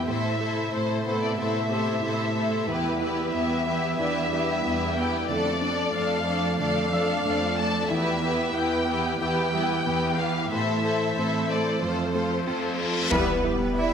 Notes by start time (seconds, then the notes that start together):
Already playing: E4 G4 A4 E5
0.07 A2 C3 A3 E4 A4 C5 E5
0.39 A3 E4 A4 C5
0.72 A2 A3 E4 A4 C5
1.06 A3 B3 E4 A4 C5 B5
1.22 D5
1.38 A2 A3 E4 A4 C5 E5
1.69 A3 C4 E4 G4 A4 C5
2.02 A2 A3 E4 A4 C5
2.36 A3 E4 A4 C5
2.68 E2 E3 G3 B3 E4 G4 B4 E5
3.01 B3 E4 G4 B4
3.33 E2 B3 E4 G4 B4 E5
3.67 B3 E4 G4 B4
3.98 E2 E3 B3 D4 E4 G4 B4 D5 E5
4.32 G3 B3 E4 G4 B4
4.64 E2 B3 E4 G4 B4
4.95 B3 E4 G4 B4 G5
5.28 F2 D3 F3 A3 D4 A4 D5
5.61 A3 D4 A4 D5
5.93 F2 A3 D4 A4 D5 F5
6.27 A3 D4 A4 D5
6.59 F2 D3 A3 D4 A4 D5 F5
6.91 F3 A3 D4 A4 D5 E6
7.25 F2 A3 D4 A4 D5
7.56 A3 D4 A4 D5 A5
7.88 E2 E3 B3 E4 G4 B4 E5
7.92 G4 B4
8.21 B3 E4 G4 B4 E5
8.54 E2 B3 E4 G4 B4 G5
8.87 B3 E4 G4 B4
9.19 E2 E3 B3 E4 G4 B4 G5
9.53 G3 B3 E4 G4 B4
9.85 E2 B3 E4 G4 B4
10.17 E3 B3 G4 B4 F5
10.51 A2 A3 E4 A4 C5 E5, reverse cymbal
10.84 A3 E4 A4 C5
11.16 A2 A3 C4 E4 A4 C5
11.49 A3 E4 A4 C5 D5
11.80 F2 F3 A3 F4 A4 C5
12.13 A3 F4 A4 C5
12.44 F2 A3 C4 F4 A4 C5
12.78 A3 F4 A4 C5
13.11 E1 E2 E3 G3 B3 G4 B4 E5, taiko, impact
13.44 E2 G3 E4 G4 B4
13.76 E4 D5 E5